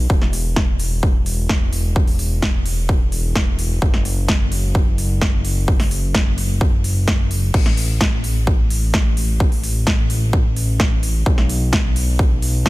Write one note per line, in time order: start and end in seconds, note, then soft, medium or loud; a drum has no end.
0.10 3.80 E1 medium
0.10 kick loud
0.22 snare soft
0.33 open hi-hat loud
0.56 kick loud
0.56 snare loud
0.80 open hi-hat loud
1.03 kick loud
1.26 open hi-hat loud
1.49 kick loud
1.49 snare loud
1.73 open hi-hat loud
1.96 kick loud
2.07 open hi-hat medium
2.19 open hi-hat loud
2.42 kick loud
2.42 snare loud
2.66 open hi-hat loud
2.89 kick loud
3.12 open hi-hat loud
3.35 kick loud
3.35 snare loud
3.59 open hi-hat loud
3.82 7.52 F#1 medium
3.82 kick loud
3.94 snare soft
4.05 open hi-hat loud
4.28 kick loud
4.28 snare loud
4.52 open hi-hat loud
4.75 kick loud
4.98 open hi-hat loud
5.21 kick loud
5.21 snare loud
5.45 open hi-hat loud
5.68 kick loud
5.80 snare soft
5.80 open hi-hat medium
5.91 open hi-hat loud
6.15 kick loud
6.15 snare loud
6.38 open hi-hat loud
6.61 kick loud
6.84 open hi-hat loud
7.08 kick loud
7.08 snare loud
7.31 open hi-hat loud
7.54 11.24 A1 medium
7.54 kick loud
7.54 crash medium
7.66 snare soft
7.77 open hi-hat loud
8.01 kick loud
8.01 snare loud
8.24 open hi-hat loud
8.47 kick loud
8.70 open hi-hat loud
8.94 kick loud
8.94 snare loud
9.17 open hi-hat loud
9.40 kick loud
9.52 open hi-hat medium
9.64 open hi-hat loud
9.87 kick loud
9.87 snare loud
10.10 open hi-hat loud
10.33 kick loud
10.56 open hi-hat loud
10.80 kick loud
10.80 snare loud
11.03 open hi-hat loud
11.26 12.69 B1 medium
11.26 kick loud
11.38 snare soft
11.49 open hi-hat loud
11.73 kick loud
11.73 snare loud
11.96 open hi-hat loud
12.19 kick loud
12.42 open hi-hat loud
12.66 kick loud
12.66 snare loud